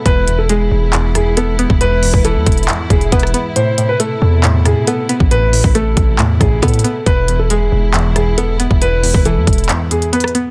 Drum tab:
HH |x-----------x-----------x-----------------------x-----------x-----------x-----------x-----------|x-----------o-----------x-----------x--x--x--x--x-----------x-----x-----x---x---x---x-----------|x-----------x-----------x-----------------------x-----------x-----------x-----------x-----------|x-----------o-----------x-----------x-----------x-----------x-----------x--x--x--x--x-----------|
CP |------------------------------------------------x-----------------------------------------------|------------------------------------------------x-----------------------------------------------|------------------------------------------------x-----------------------------------------------|------------------------------------------------x-----------------------------------------------|
SD |------------------------------------------------------------r-----------------------------------|------------------------------------------------------------------------------r-----------------|------------------------------------------------------------r-----------------------------------|------------------------------------------------------------r-----------------------------------|
BD |o-----------------------------------------------------------------------------------------o-----|------------------o-----------------o-----------------------o-----------o-----------------------|------------------------------------------------------------------------------------------o-----|------------------o-----------------o-----------------------o-----------o-----------------------|

HH |x-----------x-----------x-----------------------x-----------x-----------x-----------x-----------|x-----------o-----------x-----------x--x--x--x--x-----------x-----x-----x---x---x---x-----------|
CP |------------------------------------------------x-----------------------------------------------|------------------------------------------------x-----------------------------------------------|
SD |------------------------------------------------------------r-----------------------------------|------------------------------------------------------------------------------r-----------------|
BD |o-----------------------------------------------------------------------------------------o-----|------------------o-----------------o-----------------------------------------------------------|